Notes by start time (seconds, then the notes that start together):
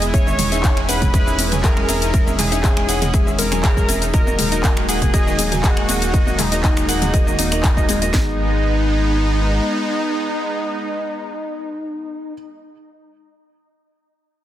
Already playing: E1 G#3 E4 G#4 G#5
0.02 G#4, closed hi-hat, shaker
0.14 E1 G#3 C#4 G#4 C#5 E5, kick, closed hi-hat, shaker
0.27 D#3 C#4 G#4 E5, high conga, shaker
0.39 G#3, mid tom, open hi-hat, shaker
0.52 C#4 D#4 G#4 E5, closed hi-hat, shaker
0.63 C#4 D#4 G#4 E5, kick, clap, closed hi-hat, high conga, shaker
0.77 G#3, finger snap
0.89 C#4 G#4 B4 F#5, open hi-hat, shaker
1.02 G#3, kick, closed hi-hat, mid tom, high conga, shaker
1.14 G#3 C#4 G#4 E5, kick, closed hi-hat, shaker
1.27 D#3 C#4 G#4 E5, shaker
1.39 G#3, open hi-hat, high conga, shaker
1.52 F#3 C#4 G#4 G#5, closed hi-hat, mid tom, shaker
1.63 G#4 A#4 E5, kick, clap, closed hi-hat, shaker
1.77 G#3, finger snap
1.89 C#4 G#4 E5, open hi-hat, high conga, shaker
2.02 D#4, closed hi-hat, shaker
2.14 G#3 C#4 G#4 E5, kick, closed hi-hat, shaker
2.27 D#3 C#4 G#4 E5, high conga, shaker
2.38 G#3 G#4, clap, mid tom, open hi-hat, shaker
2.52 C#4 D#4 G#4 E5, closed hi-hat, shaker
2.63 C#4 D#4 G#4 E5, kick, clap, closed hi-hat, high conga, shaker
2.77 G#3, finger snap
2.89 C#4 G#4 F#5, open hi-hat, shaker
3.02 G#3, closed hi-hat, mid tom, high conga, shaker
3.14 G#3 C#4 G#4 E5, kick, closed hi-hat, shaker
3.27 D#3 C#4 G#4 E5, shaker
3.39 G#3 A#4, open hi-hat, high conga, shaker
3.52 F#3 C#4 G#4 G#5, finger snap, closed hi-hat, shaker
3.63 C#4 G#4 E5, finger snap, kick, clap, closed hi-hat, shaker
3.77 G#3, kick, shaker
3.89 C#4 G#4 E5, open hi-hat, high conga, shaker
4.02 D#4, closed hi-hat, shaker
4.14 D#1 F#3 G#3 A#3 D#4 F#4 A#4 D#5, kick, closed hi-hat, shaker
4.27 D#3 A#3 F#4 D#5, high conga, shaker
4.39 G#3, mid tom, open hi-hat, shaker
4.52 A#3 D#4 F#4 D#5, closed hi-hat, shaker
4.63 A#3 D#4 F#4 D#5, kick, clap, closed hi-hat, high conga, shaker
4.77 G#3, finger snap
4.89 A#3 F#4 G#4 F#5, open hi-hat, shaker
5.02 G#3, kick, closed hi-hat, mid tom, high conga, shaker
5.14 G#3 A#3 F#4 D#5, kick, closed hi-hat, shaker
5.27 D#3 A#3 F#4 D#5, shaker
5.39 G#3, open hi-hat, high conga, shaker
5.52 F#3 A#3 F#4 G#5, closed hi-hat, mid tom, shaker
5.63 A#3 F#4 G#4 D#5, kick, clap, closed hi-hat, shaker
5.77 G#3, finger snap
5.89 A#3 F#4 G#4 D#5, open hi-hat, high conga, shaker
6.02 D#4, closed hi-hat, shaker
6.14 G#3 A#3 F#4 D#5, kick, closed hi-hat, shaker
6.27 D#3 A#3 F#4 D#5, high conga, shaker
6.38 G#3 D#4, clap, mid tom, open hi-hat, shaker
6.52 A#3 D#4 F#4 D#5, closed hi-hat, shaker
6.63 A#3 D#4 F#4 D#5, kick, clap, closed hi-hat, high conga, shaker
6.77 G#3, finger snap, shaker
6.89 A#3 F#4 G#4 F#5, open hi-hat, shaker
7.02 G#3, closed hi-hat, mid tom, high conga, shaker
7.14 G#3 A#3 F#4 D#5, kick, closed hi-hat, shaker
7.27 D#3 A#3 F#4 D#5, shaker
7.39 D#3 A#3 D#4 F#4 D#5, open hi-hat, high conga, shaker
7.52 A#3 D#4 F#4 D#5, finger snap, closed hi-hat, shaker
7.63 G#3, finger snap, kick, clap, closed hi-hat, shaker
7.77 A#3 D#4 F#4 D#5, kick, shaker
7.89 G#3, open hi-hat, high conga, shaker
8.02 G#3 A#3 F#4 D#5, closed hi-hat, shaker
8.14 G#1 G#3 B3 D#4 G#4, kick, snare